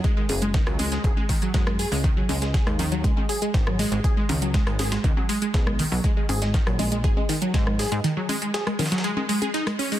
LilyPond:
<<
  \new Staff \with { instrumentName = "Synth pluck" } { \clef bass \time 4/4 \key gis \minor \tempo 4 = 120 gis16 gis16 gis'16 gis16 dis16 fis16 gis16 gis16 gis'16 gis16 dis16 fis16 gis16 gis16 gis'16 gis16 | dis16 fis16 gis16 gis16 gis'16 gis16 dis16 fis16 gis16 gis16 gis'16 gis16 dis16 fis16 gis16 gis16 | gis'16 gis16 dis16 fis16 gis16 gis16 gis'16 gis16 dis16 fis16 gis16 gis16 gis'16 gis16 dis16 fis16 | gis16 gis16 gis'16 gis16 dis16 fis16 gis16 gis16 gis'16 gis16 dis16 fis16 gis16 gis16 gis'16 gis16 |
dis16 fis16 gis16 gis16 gis'16 gis16 dis16 fis16 gis16 gis16 gis16 gis'16 dis'16 gis16 cis'16 gis16 | }
  \new Staff \with { instrumentName = "Analog synth bass" } { \clef bass \time 4/4 \key gis \minor r8 fis,,8 r16 cis,8 r16 fis,,16 r8. fis,8 r16 cis,16~ | cis,16 r16 cis,8 r16 dis,8. cis,16 r8. gis,,8 r16 gis,,16 | r8 cis,8 r16 gis,,8 r16 cis,16 r8. b,,8 r16 b,,16 | r8 gis,,8 r16 ais,,8. gis,,16 r8. gis,8 r16 gis,16 |
r1 | }
  \new DrumStaff \with { instrumentName = "Drums" } \drummode { \time 4/4 <hh bd>8 <cgho hh hho>16 hh16 <hh bd sn>16 <hh ss>16 <cgho hh hho>16 <hh sn>16 <hh bd>16 cgho16 <hh hho bd>16 hh16 <hh bd sn>16 ss16 <hh hho>16 hho16 | <hh bd>8 <cgho hh hho>16 <hh sn>16 <hh bd sn>16 <hh ss>16 <cgho cgl hh hho>16 hh16 <hh bd>16 cgho16 <hh hho>16 hh16 <hh bd sn>16 <cgl ss>16 <hho sn>16 hh16 | <hh bd>8 <cgho hh hho>16 hh16 <hh bd sn>16 <hh ss>16 <cgho hh hho sn>16 <hh sn>16 <hh bd>16 cgho16 <hh hho>16 hh16 <hh bd sn>16 ss16 <hh hho>16 hho16 | <hh bd>8 <cgho hh hho>16 <hh sn>16 <hh bd sn>16 <hh ss>16 <cgho cgl hh hho>16 hh16 <hh bd>16 cgho16 <hh hho>16 hh16 <hh bd sn>16 <cgl ss>16 <hho sn>16 hh16 |
hh8 <cgho hh hho>16 hh16 <hh sn>16 <hh ss>16 <cgho cgl hh hho sn>32 <hh sn>32 <hh sn>32 <hh sn>32 hh16 cgho16 <hh hho>16 <cgho hh>16 hh16 <hh ss>16 hho16 <hh hho>16 | }
>>